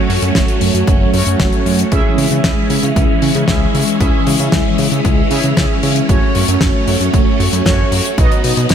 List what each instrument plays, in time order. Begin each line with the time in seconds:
Already playing: string machine F#3 A3 C#4, analog polysynth A3 C#4 F#4 C#5
0.09 analog synth bass F#2, open hi-hat
0.22 analog synth bass F#2, closed hi-hat
0.35 analog synth bass F#1, kick, snare, closed hi-hat
0.48 closed hi-hat
0.61 analog synth bass F#2, open hi-hat
0.74 analog synth bass F#2, closed hi-hat
0.87 analog synth bass F#1, kick, closed hi-hat
1.13 analog synth bass F#2, analog polysynth A3 C#4 F#4 C#5, open hi-hat
1.27 analog synth bass F#2, closed hi-hat
1.40 analog synth bass F#1, kick, snare, closed hi-hat
1.53 closed hi-hat
1.66 analog synth bass F#2, open hi-hat
1.79 closed hi-hat
1.92 analog synth bass C#2, string machine E3 G#3 C#4, analog polysynth C#4 E4 G#4 E5, kick, closed hi-hat
2.18 analog synth bass C#3, open hi-hat
2.31 analog synth bass C#3, closed hi-hat
2.44 analog synth bass C#2, kick, snare, closed hi-hat
2.70 analog synth bass C#3, open hi-hat
2.83 analog synth bass C#3, closed hi-hat
2.96 analog synth bass C#2, kick, closed hi-hat
3.22 analog synth bass C#3, open hi-hat
3.35 analog synth bass C#3, closed hi-hat
3.48 analog synth bass C#2, analog polysynth C#4 E4 G#4 E5, kick, snare, closed hi-hat
3.74 analog synth bass C#3, open hi-hat
3.88 closed hi-hat
4.00 analog synth bass C#2, analog polysynth C#4 E4 G#4 E5, kick, closed hi-hat
4.27 analog synth bass C#3, open hi-hat
4.40 analog synth bass C#3, closed hi-hat
4.52 analog synth bass C#2, kick, snare, closed hi-hat
4.78 analog synth bass C#3, open hi-hat
4.92 analog synth bass C#3, closed hi-hat
5.05 analog synth bass C#2, kick, closed hi-hat
5.31 analog synth bass C#3, analog polysynth C#4 E4 G#4 E5, open hi-hat
5.43 analog synth bass C#3, closed hi-hat
5.57 analog synth bass C#2, kick, snare, closed hi-hat
5.83 analog synth bass C#3, open hi-hat
5.96 closed hi-hat
6.09 analog synth bass F#1, string machine F#3 A3, analog polysynth A3 C#4 F#4 C#5, kick, closed hi-hat
6.35 analog synth bass F#2, open hi-hat
6.48 analog synth bass F#2, closed hi-hat
6.61 analog synth bass F#1, kick, snare, closed hi-hat
6.87 analog synth bass F#2, open hi-hat
7.01 analog synth bass F#2, closed hi-hat
7.13 analog synth bass F#1, kick, closed hi-hat
7.40 analog synth bass F#2, open hi-hat
7.53 analog synth bass F#2, closed hi-hat
7.66 analog synth bass F#1, analog polysynth A3 C#4 F#4 C#5, kick, snare, closed hi-hat
7.92 analog synth bass F#2, open hi-hat
8.05 closed hi-hat
8.18 analog synth bass B1, string machine B3 D#4, analog polysynth B3 D#4 F#4 D#5, kick, closed hi-hat
8.32 closed hi-hat
8.44 analog synth bass B2, open hi-hat
8.57 analog synth bass B2, closed hi-hat
8.69 analog synth bass B1, kick, snare, closed hi-hat